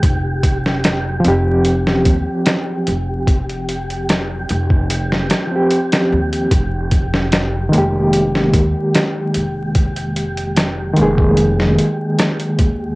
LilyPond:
<<
  \new Staff \with { instrumentName = "Synth texture" } { \time 4/4 \key f \minor \tempo 4 = 74 g'1~ | g'1~ | g'1~ | g'1 | }
  \new Staff \with { instrumentName = "Reed electric piano" } { \time 4/4 \key f \minor r4. <f c' g'>2~ <f c' g'>8~ | <f c' g'>4. r4 r16 <f c' g'>4~ <f c' g'>16 | r4. <ees aes bes g'>2~ <ees aes bes g'>8~ | <ees aes bes g'>4. <ees aes bes aes'>2~ <ees aes bes aes'>8 | }
  \new Staff \with { instrumentName = "Upright bass" } { \clef bass \time 4/4 \key f \minor f,,4. f,,4 ees,8 r8 f,,8~ | f,,4. f,,4 r4 ees,8 | f,,4. f,,4 ees,8 r8 f,,8~ | f,,4. f,,4 r4 ees,8 | }
  \new DrumStaff \with { instrumentName = "Drums" } \drummode { \time 4/4 <hh bd>8 <hh bd>16 sn16 <hh sn>8 hh8 hh16 sn16 <hh bd>8 <hh sn>8 hh8 | <hh bd>16 hh16 hh16 hh16 <hh sn>8 hh16 bd16 hh16 sn16 <hh sn>8 hh16 <hh sn>8 hh16 | <hh bd>8 <hh bd>16 sn16 <hh sn>8 hh8 hh16 sn16 <hh bd>8 <hh sn>8 hh8 | <hh bd>16 hh16 hh16 hh16 <hh sn>8 hh16 bd16 hh16 sn16 hh8 <hh sn>16 hh16 <hh bd>8 | }
>>